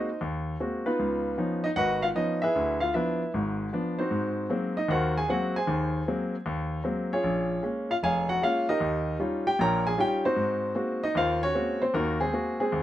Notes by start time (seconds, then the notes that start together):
Already playing: D#4 C5 D#5
0.21 D#2
0.60 G#3 A#3 C4 F#4
0.86 B3 D#4 F4 B4
0.99 C#2
1.38 F3 B3 C#4 D#4
1.64 D#4 D#5
1.76 G#1 F#4 B4 D#5 F#5
2.02 F4 F5
2.15 F3 B3 C#4 D#4 D#5
2.42 E4 G#4 B4 E5
2.55 D2
2.80 F4 F5
2.94 F3 B3 D4 E4 B4 E5
3.34 G#1 G#2
3.73 F3 B3 D4
3.99 C4 D#4 F#4 C5
4.11 G#2
4.50 F#3 G#3 A#3 C4
4.77 D#4 D#5
4.88 D#2 D#3 F#4 A#4 C5 F#5
5.17 G#4 G#5
5.28 F#3 G#3 A#3 C4 F#4 F#5
5.56 G#4 C5 G#5
5.67 D#2 D#3
6.08 F#3 G#3 A#3 C4
6.46 D#2
6.84 F#3 G#3 A#3 C4
7.13 C#4 F4 G#4 C#5
7.24 A#1
7.63 G#3 A#3 C#4
7.91 F4 F5
8.03 F1 G#4 C#5 F5 G#5
8.29 F#4 F#5
8.42 G#3 A#3 C#4 F4 F5
8.69 D#4 G4 A#4 D#5
8.80 D#2
9.19 G3 C#4 D#4 F4
9.47 G4 G5
9.59 A#1 A#2 A#4 C#5 G5 A#5
9.87 G#4 G#5
9.97 G3 C#4 D#4 F4 G4 G5
10.25 C4 D#4 F#4 C5
10.36 G#2
10.75 G#3 A#3 C4 F#4
11.03 D#4 D#5
11.15 D#2 F4 A#4 C5 F5
11.43 C#4 F#4 C#5
11.54 G#3 A#3 C4 F#4
11.82 C4 C5
11.94 D#2 A#3 D#4 F#4 A#4
12.20 G#3 C4 G#4
12.33 G#3 A#3 C4 F#4
12.60 G#3 C4 G#4
12.72 D#2